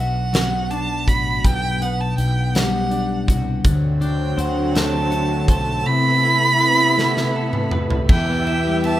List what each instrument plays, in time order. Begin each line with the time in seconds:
Already playing: fretless electric bass B1, clean electric guitar B2 B3 D4 F#4, violin F#5
0.33 clean electric guitar F#3, snare, closed hi-hat
0.71 clean electric guitar D4, violin A5, closed hi-hat
1.07 fretless electric bass A1, clean electric guitar F#4, violin B5, kick, closed hi-hat
1.44 fretless electric bass B1, clean electric guitar B2, violin G5, kick, closed hi-hat
1.82 clean electric guitar B3, violin F#5, closed hi-hat
2.00 violin A5
2.18 fretless electric bass B1, violin G5, closed hi-hat
2.55 clean electric guitar G3, violin F#5, snare, closed hi-hat
2.91 clean electric guitar D4, closed hi-hat
3.28 fretless electric bass C2, clean electric guitar F#4, kick, closed hi-hat
3.65 fretless electric bass D2, clean electric guitar D3, string section D3 F#3 A3 C4, kick, closed hi-hat
4.01 clean electric guitar D4, violin G5, closed hi-hat
4.37 fretless electric bass D2, clean electric guitar C5, violin F#5, closed hi-hat
4.75 clean electric guitar A3, violin A5, snare, closed hi-hat
5.11 clean electric guitar F#4, closed hi-hat
5.48 fretless electric bass B1, clean electric guitar C5, violin A5, kick, closed hi-hat
5.85 string section C3 B3 E4, clean electric guitar C3, violin B5
6.24 clean electric guitar E4
6.61 clean electric guitar B4
6.98 clean electric guitar A3, snare
7.17 snare
7.36 clean electric guitar A4
7.53 mid tom
7.71 clean electric guitar B4, mid tom
7.90 floor tom
8.09 fretless electric bass E2, string section E3 B3 G4 E5, clean electric guitar E3, violin G5, kick, crash
8.30 clean electric guitar B3
8.47 clean electric guitar E4, ride
8.67 clean electric guitar G3
8.84 clean electric guitar B3, violin A5, ride